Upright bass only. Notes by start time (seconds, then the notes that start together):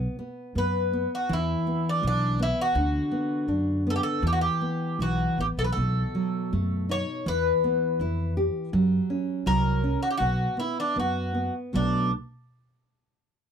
0.55 F#2
1.29 E2
2.03 B1
2.75 D2
3.48 F#2
4.22 E2
4.99 B1
5.38 A1
5.57 B1
5.77 B1
6.53 F#2
7.26 E2
8.00 F2
8.73 F#2
9.46 C2
10.20 B1
10.96 F#2
11.74 B1